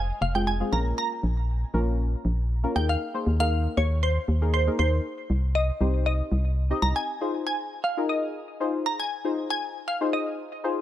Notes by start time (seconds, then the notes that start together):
Already playing: F1 G#5
0.21 F1 F5
0.34 G#3 C4 F4 G#4 G5
0.47 G#5
0.60 G#3 C4 F4 G#4
0.72 A#1 A#3 C#4 F4 A#4 A#5
0.98 A#5
1.23 A#1
1.74 A#1 A#3 C#4 F4 A#4
2.25 A#1
2.63 A#3 C#4 F4 A#4
2.75 D#2 A#3 D#4 G#4 A#4 G5
2.89 F5
3.14 A#3 D#4 G#4 C5
3.26 D#2
3.39 A#3 D#4 G#4 A#4 F5
3.77 D#2 C#5
4.03 C5
4.28 D#2
4.41 A#3 D#4 G#4 A#4
4.54 C5
4.67 A#3 D#4 G#4 A#4
4.79 D#2 C5
5.30 C2
5.55 D#5
5.80 C2 C4 D#4 G4 C5
6.06 D#5
6.32 C2
6.70 C4 D#4 G4 D#5
6.82 C2 A#5
6.96 G#5
7.21 D#4 F4 G#4 C5
7.47 G#5
7.84 F5
7.97 D#4 F4 G#4 A#4
8.09 D#5
8.60 D#4 F4 G#4 C5
8.86 A#5
8.99 G#5
9.24 D#4 F4 G#4 C5
9.50 G#5
9.88 F5
10.01 D#4 F4 G#4 C5
10.13 D#5
10.64 D#4 F4 G#4 C5